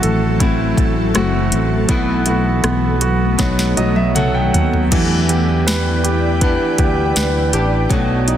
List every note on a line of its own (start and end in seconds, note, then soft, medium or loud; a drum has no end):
0.00 0.74 A1 medium
0.00 3.35 E3 medium
0.00 3.35 F#3 medium
0.00 1.85 A3 medium
0.00 3.35 A3 medium
0.00 0.40 C4 soft
0.00 1.86 C4 medium
0.00 0.38 E4 soft
0.00 0.41 E4 soft
0.00 0.42 F#4 soft
0.00 1.10 F#4 medium
0.00 4.88 A4 medium
0.00 1.47 A4 medium
0.00 closed hi-hat medium
0.40 1.14 A3 medium
0.40 1.14 C4 medium
0.40 1.85 E4 medium
0.40 1.15 E4 medium
0.40 1.16 F#4 medium
0.40 kick medium
0.40 closed hi-hat medium
0.77 1.12 A1 medium
0.77 kick medium
0.77 closed hi-hat medium
1.14 1.50 F#1 medium
1.14 1.89 A3 medium
1.14 1.89 C4 medium
1.14 1.89 E4 medium
1.14 1.87 F#4 medium
1.14 1.90 F#4 medium
1.14 cross-stick loud
1.14 closed hi-hat medium
1.52 1.87 A1 medium
1.52 closed hi-hat medium
1.88 2.60 B1 loud
1.88 2.26 B2 medium
1.88 2.27 E3 medium
1.88 2.27 A3 medium
1.88 4.88 B3 medium
1.88 2.62 B3 medium
1.88 2.26 E4 medium
1.88 2.24 F#4 medium
1.88 kick loud
1.88 closed hi-hat medium
2.26 3.38 A3 soft
2.26 3.39 E4 soft
2.26 3.39 F#4 soft
2.26 3.00 F#4 soft
2.26 closed hi-hat medium
2.64 3.35 B1 medium
2.64 3.37 B3 medium
2.64 cross-stick loud
2.64 closed hi-hat medium
3.01 3.38 F#4 medium
3.01 closed hi-hat medium
3.38 3.75 B1 medium
3.38 4.90 D#3 medium
3.38 4.14 F#3 medium
3.38 4.90 F#3 medium
3.38 4.90 A3 medium
3.38 4.15 A3 medium
3.38 4.87 B3 medium
3.38 4.16 D#4 medium
3.38 4.16 F#4 medium
3.38 kick medium
3.38 snare soft
3.38 closed hi-hat medium
3.59 snare soft
3.77 4.50 B1 medium
3.77 4.88 F#3 medium
3.77 3.95 D#5 medium
3.77 closed hi-hat medium
3.96 4.14 E5 medium
3.96 high tom medium
4.15 4.91 F#3 medium
4.15 4.92 A3 medium
4.15 4.92 D#4 medium
4.15 4.93 F#4 medium
4.15 4.89 A4 medium
4.15 4.33 F#5 medium
4.15 closed hi-hat medium
4.15 mid tom medium
4.34 4.88 G5 medium
4.53 4.89 D#2 medium
4.53 4.90 F#5 medium
4.53 closed hi-hat medium
4.53 floor tom medium
4.74 floor tom medium
4.91 6.57 E2 loud
4.91 6.40 E3 medium
4.91 7.87 E3 medium
4.91 6.42 B3 medium
4.91 6.42 D4 medium
4.91 7.87 E4 medium
4.91 6.42 G4 medium
4.91 7.87 B4 medium
4.91 7.87 D5 medium
4.91 7.87 G5 medium
4.91 kick loud
4.91 closed hi-hat medium
4.91 crash loud
5.29 6.02 G4 soft
5.29 closed hi-hat medium
5.67 6.40 B4 medium
5.67 snare loud
5.67 closed hi-hat medium
6.04 6.78 G4 soft
6.04 closed hi-hat medium
6.41 7.53 E3 medium
6.41 7.55 B3 medium
6.41 7.53 D4 medium
6.41 7.52 G4 medium
6.41 7.15 B4 medium
6.41 kick medium
6.41 closed hi-hat medium
6.78 7.13 D2 medium
6.78 7.52 G4 soft
6.78 kick medium
6.78 closed hi-hat medium
7.16 7.51 D2 medium
7.16 7.88 B4 medium
7.16 snare loud
7.16 closed hi-hat medium
7.53 7.88 A1 medium
7.53 7.91 B3 soft
7.53 7.91 D4 medium
7.53 7.90 G4 medium
7.53 7.90 G4 soft
7.53 closed hi-hat medium
7.89 8.37 B2 medium
7.89 8.37 F#3 medium
7.89 8.37 A3 medium
7.89 8.37 D#4 medium
7.89 8.37 F#4 medium
7.89 8.37 B4 medium
7.89 8.37 D#5 medium
7.89 8.37 A5 medium
7.89 kick loud
7.89 closed hi-hat medium
8.28 8.37 D#4 medium
8.28 closed hi-hat medium